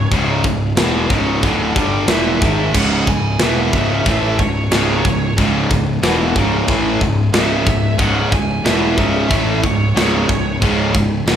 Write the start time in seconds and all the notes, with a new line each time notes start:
0.11 C#1 C#2 G#2 C#3, kick, china
0.44 C#1 C#2 G#2, kick
0.75 E1 E2 B2 E3, snare, china
1.09 C#1 C#2 G#2 C#3, kick
1.42 D1 D2 A2 D3, kick, china
1.75 G1 G2 D3 G3, kick
2.08 E1 E2 B2 E3 E5, snare, china
2.41 G#1 G#2 D#3 G#3, kick
2.74 C#1 C#2 G#2 C#3 F#5, kick, crash, china
3.07 C#1 C#2 G#2 G#5, kick
3.39 E1 E2 B2 E3 E5, snare, china
3.73 C#1 C#2 G#2 C#3, kick
4.06 A1 A2 E3 A3, kick, china
4.39 C#1 C#2 G#2 C#5, kick
4.71 C#1 C#2 G#2 C#3, snare, china
5.05 C#1 C#2 G#2, kick
5.37 C#1 C#2 G#2 C#3, kick, china
5.70 C#1 C#2 G#2, kick
6.02 E1 E2 B2 E3, snare, china
6.36 C#1 C#2 G#2 C#3, kick
6.68 A1 A2 E3 A3, kick, china
7.01 C#1 C#2 G#2, kick
7.33 C#1 C#2 G#2 C#3 E5, snare, china
7.66 C#1 C#2 G#2, kick
7.98 C#1 C#2 G#2 C#3 F#5, kick, china
8.32 C#1 C#2 G#2 G#5, kick
8.64 E1 E2 B2 E3 E5, snare, china
8.98 C#1 C#2 G#2 C#3, kick
9.30 A1 A2 E3 A3, kick, china
9.63 C#1 C#2 G#2 C#5, kick
9.94 C#1 C#2 G#2 C#3, snare, china
10.28 C#1 C#2 G#2, kick
10.62 C#1 C#2 G#2 C#3, kick, china
10.95 C#1 C#2 G#2, kick
11.26 E1 E2 B2, snare, china
11.30 E3